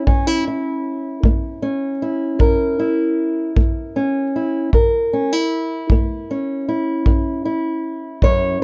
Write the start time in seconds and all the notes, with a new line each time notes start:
Already playing: C#4 C#5
0.07 F#2 C#4, kick
0.27 E4
0.47 E4
1.23 A#3, kick
1.62 C#4
2.02 E4
2.39 F#2 A#4, kick
2.79 E4
3.56 A#3, kick
3.96 C#4
4.36 E4
4.73 F#2 A#4, kick
5.13 C#4
5.33 E4
5.90 A#3, kick
6.31 C#4
6.69 E4
7.06 F#2, kick
7.45 E4
8.22 F#2 C#5, kick